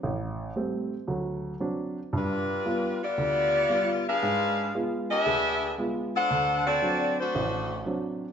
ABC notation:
X:1
M:4/4
L:1/8
Q:"Swing" 1/4=115
K:Glyd
V:1 name="Saxophone section"
z8 | [G,D=FB]3 [B,FGd]4 [D^GB=f]- | [D^GB=f]2 z [DGBe]3 z [DA=c^f]- | [DA=cf] [=CFAd]2 [A,DFc]3 z2 |]
V:2 name="Grand piano" clef=bass
A,,,2 [G,A,=C] z [D,,F,]2 [F,CD] z | G,,2 [G,B,=F] z D,,2 [G,B,F] z | [^G,,^G,]2 [G,B,^E] z [D,,D,]2 [G,B,E] z | D,,2 [F,=CD] z A,,,2 [F,CD] z |]